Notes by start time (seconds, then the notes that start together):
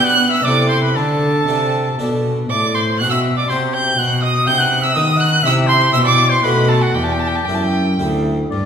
Already playing: B3 D4 G4
0.04 F#5 F#6
0.30 E5 E6
0.43 C3 E4 D5 D6
0.47 A4
0.69 C5 C6
0.82 B4 B5
0.95 D3 A4 A5
1.47 C3 D4 A4
1.99 B2 D4 A4
2.49 A2 D5 D6
2.75 C5 C6
3.00 B2 C4 F#4 F#5 F#6
3.10 E5 E6
3.37 D5 D6
3.49 C3 C4 F#4 C5 C6
3.74 G5 G6
3.98 B2 F#5 F#6
4.23 D#5 D#6
4.47 C3 B3 D#4 G5 G6
4.59 F#5 F#6
4.82 E5 E6
4.93 D#3 B3 D#4 D#5 D#6
5.18 F#5 F#6
5.43 C3 E4 G4 E5 E6
5.67 C5 C6
5.92 B2 E4 G4 E5 E6
6.04 D5 D6
6.30 C5 C6
6.42 B2 A3 D#4 F#4 B4 B5
6.68 A4 A5
6.82 F#4 F#5
6.95 E2 G4 G5
7.03 A5
7.12 G5
7.19 A5
7.27 G5
7.35 A5
7.45 F#2 G5
7.49 E4 G4
7.55 A5
7.62 G5
7.99 D2 E4 G4
8.51 G2 D4 D5